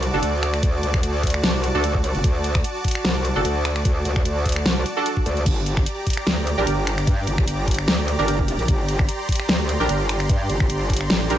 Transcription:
Already playing: wobble bass C2, supersaw synth F#4 D5 A5 D6
0.03 closed hi-hat
0.13 wobble bass F#1, synth stab D4 F#4 A4
0.23 wobble bass D2, closed hi-hat
0.43 finger snap, closed hi-hat
0.54 finger snap, closed hi-hat
0.63 wobble bass D2, kick, closed hi-hat
0.83 wobble bass D2, closed hi-hat
0.94 finger snap, kick
1.03 wobble bass D2, closed hi-hat
1.23 kick, closed hi-hat
1.27 closed hi-hat
1.30 closed hi-hat
1.34 finger snap
1.44 wobble bass C2, snare
1.64 closed hi-hat
1.75 wobble bass D2, synth stab D4 F#4 A4
1.84 closed hi-hat
1.95 kick
2.04 closed hi-hat
2.15 wobble bass F#1, closed hi-hat
2.24 wobble bass D2, kick, closed hi-hat
2.44 closed hi-hat
2.55 finger snap, kick
2.64 closed hi-hat
2.84 kick, closed hi-hat
2.88 closed hi-hat
2.91 closed hi-hat
2.95 finger snap
3.05 wobble bass C2, snare
3.25 closed hi-hat
3.36 wobble bass F#1, synth stab D4 F#4 A4
3.45 wobble bass D2, closed hi-hat
3.65 finger snap, closed hi-hat
3.76 finger snap, closed hi-hat
3.85 wobble bass D2, kick, closed hi-hat
4.05 wobble bass D2, closed hi-hat
4.16 finger snap, kick
4.25 wobble bass D2, closed hi-hat
4.46 kick, closed hi-hat
4.49 closed hi-hat
4.52 closed hi-hat
4.56 finger snap
4.66 wobble bass C2, snare
4.86 closed hi-hat
4.97 synth stab D4 F#4 A4
5.06 closed hi-hat
5.17 kick
5.26 wobble bass D2, closed hi-hat
5.37 closed hi-hat
5.46 wobble bass G1, supersaw synth G4 D5 A#5 D6, kick, closed hi-hat, crash
5.66 closed hi-hat
5.77 finger snap, kick
5.86 closed hi-hat
6.07 kick, closed hi-hat
6.10 closed hi-hat
6.13 closed hi-hat
6.17 finger snap
6.27 wobble bass D2, snare
6.47 closed hi-hat
6.58 wobble bass A#1, synth stab D4 G4 A#4
6.67 wobble bass G1, closed hi-hat
6.87 finger snap, closed hi-hat
6.98 finger snap, closed hi-hat
7.07 wobble bass G2, kick, closed hi-hat
7.27 wobble bass G1, closed hi-hat
7.38 finger snap, kick
7.47 wobble bass G1, closed hi-hat
7.68 kick, closed hi-hat
7.71 closed hi-hat
7.74 closed hi-hat
7.78 finger snap
7.88 wobble bass D2, snare
8.08 closed hi-hat
8.19 wobble bass G1, synth stab D4 G4 A#4
8.28 closed hi-hat
8.39 kick
8.48 closed hi-hat
8.59 wobble bass A#1, closed hi-hat
8.68 wobble bass G1, supersaw synth C6, kick, closed hi-hat
8.88 closed hi-hat
8.99 finger snap, kick
9.09 closed hi-hat
9.29 kick, closed hi-hat
9.32 closed hi-hat
9.35 closed hi-hat
9.40 finger snap
9.49 wobble bass D2, snare
9.69 closed hi-hat
9.80 wobble bass A#1, synth stab D4 G4 A#4
9.89 wobble bass G1, closed hi-hat
10.09 finger snap, closed hi-hat
10.20 finger snap, closed hi-hat
10.29 wobble bass G2, kick, closed hi-hat
10.50 wobble bass G1, closed hi-hat
10.60 finger snap, kick
10.70 wobble bass G1, closed hi-hat
10.90 kick, closed hi-hat
10.93 closed hi-hat
10.96 closed hi-hat
11.01 finger snap
11.10 wobble bass A1, snare
11.30 wobble bass A#1, synth stab D4 G4 A#4, closed hi-hat

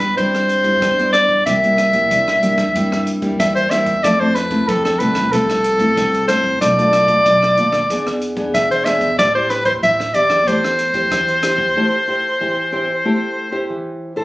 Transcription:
Already playing: upright bass G2, nylon-string guitar G2, soprano saxophone B4
0.00 kick, cross-stick, closed hi-hat
0.17 upright bass G2, nylon-string guitar C3 G3 E4, soprano saxophone C5, kick, closed hi-hat
0.35 cross-stick, closed hi-hat
0.49 closed hi-hat
0.64 nylon-string guitar G3 B3 E4, kick, closed hi-hat
0.82 nylon-string guitar G2, upright bass G2, kick, cross-stick, closed hi-hat
0.99 nylon-string guitar G3 B3 E4, closed hi-hat
1.13 soprano saxophone D5, cross-stick, closed hi-hat
1.29 kick
1.46 upright bass C2, nylon-string guitar C3 G3 A#3 E4, soprano saxophone E5, kick, cross-stick, closed hi-hat
1.64 nylon-string guitar G3 A#3 E4, closed hi-hat
1.78 cross-stick, closed hi-hat
1.93 nylon-string guitar G3 A#3 E4, kick, closed hi-hat
2.11 upright bass C2, nylon-string guitar G2, kick, closed hi-hat
2.28 cross-stick
2.42 upright bass G2, nylon-string guitar G3 A#3 E4, closed hi-hat
2.58 kick, cross-stick
2.75 upright bass G2, nylon-string guitar C3 G3 A#3 E4, kick, closed hi-hat
2.92 cross-stick
3.07 closed hi-hat
3.22 nylon-string guitar G3 A#3 E4, kick, closed hi-hat
3.40 upright bass E2, nylon-string guitar G2, soprano saxophone E5, kick, cross-stick, closed hi-hat
3.55 soprano saxophone C5, closed hi-hat
3.70 nylon-string guitar G3 A#3 E4, soprano saxophone E5, cross-stick, closed hi-hat
3.86 kick, closed hi-hat
4.03 upright bass F2, nylon-string guitar F3 A3 C4 E4, soprano saxophone D5, kick, cross-stick, closed hi-hat
4.20 nylon-string guitar A3 C4 E4, soprano saxophone C5
4.35 soprano saxophone B4, cross-stick, closed hi-hat
4.51 nylon-string guitar A3 C4 E4, kick, closed hi-hat
4.68 upright bass F2, nylon-string guitar C3, soprano saxophone A4, kick, closed hi-hat
4.85 soprano saxophone A4, cross-stick
4.99 upright bass C2, nylon-string guitar A3 C4 E4, soprano saxophone B4, closed hi-hat
5.15 kick, cross-stick, closed hi-hat
5.32 upright bass C2, nylon-string guitar F3 A3 C4 E4, soprano saxophone A4, kick, closed hi-hat
5.50 cross-stick, closed hi-hat
5.64 closed hi-hat
5.79 nylon-string guitar A3 C4 E4, kick, closed hi-hat
5.97 upright bass C2, nylon-string guitar C3, kick, cross-stick, closed hi-hat
6.14 closed hi-hat
6.28 nylon-string guitar A3 C4 E4, soprano saxophone C5, cross-stick, closed hi-hat
6.44 kick
6.61 upright bass B1, nylon-string guitar B2 A3 D4 F4, soprano saxophone D5, kick, cross-stick, closed hi-hat
6.78 nylon-string guitar A3 D4 F4, closed hi-hat
6.93 cross-stick, closed hi-hat
7.08 nylon-string guitar A3 D4 F4, kick, closed hi-hat
7.26 upright bass B1, nylon-string guitar B2, kick, closed hi-hat
7.42 cross-stick
7.57 upright bass D#2, nylon-string guitar A3 D4 F4, closed hi-hat
7.72 kick, cross-stick
7.90 upright bass E2, nylon-string guitar E3 B3 D4 G#4, kick, closed hi-hat
8.07 cross-stick
8.21 closed hi-hat
8.37 nylon-string guitar B3 D4 G#4, kick, closed hi-hat
8.54 upright bass E2, nylon-string guitar B2, soprano saxophone E5, kick, cross-stick, closed hi-hat
8.71 soprano saxophone C5, closed hi-hat
8.85 nylon-string guitar B3 D4 G#4, soprano saxophone E5, cross-stick, closed hi-hat
9.01 kick, closed hi-hat
9.19 upright bass A1, nylon-string guitar A3 E4 G4 C5, soprano saxophone D5, kick, cross-stick, closed hi-hat
9.35 nylon-string guitar E4 G4 C5, soprano saxophone C5
9.50 soprano saxophone B4, cross-stick, closed hi-hat
9.65 nylon-string guitar E4 G4 C5, soprano saxophone C5, kick, closed hi-hat
9.83 upright bass A1, nylon-string guitar E3, soprano saxophone E5, kick, closed hi-hat
10.00 cross-stick
10.14 upright bass E2, nylon-string guitar E4 G4 C5, soprano saxophone D5, closed hi-hat
10.30 kick, cross-stick, closed hi-hat
10.47 upright bass E2, nylon-string guitar A3 E4 G4 C5, soprano saxophone C5, kick, closed hi-hat
10.64 cross-stick, closed hi-hat
10.79 closed hi-hat
10.94 nylon-string guitar E4 G4 C5, kick, closed hi-hat
11.11 upright bass E2, nylon-string guitar E3, kick, cross-stick, closed hi-hat
11.28 closed hi-hat
11.43 nylon-string guitar E4 G4 C5, cross-stick, closed hi-hat
11.58 kick
11.76 nylon-string guitar A3 E4 G4 C5
12.08 nylon-string guitar E4 G4 C5
12.41 nylon-string guitar E3 E4 G4 C5
12.72 nylon-string guitar E4 G4 C5
13.05 nylon-string guitar A3 E4 G4 C5
13.52 nylon-string guitar E4 G4 C5
13.70 nylon-string guitar E3
14.16 nylon-string guitar E4 A4 C5

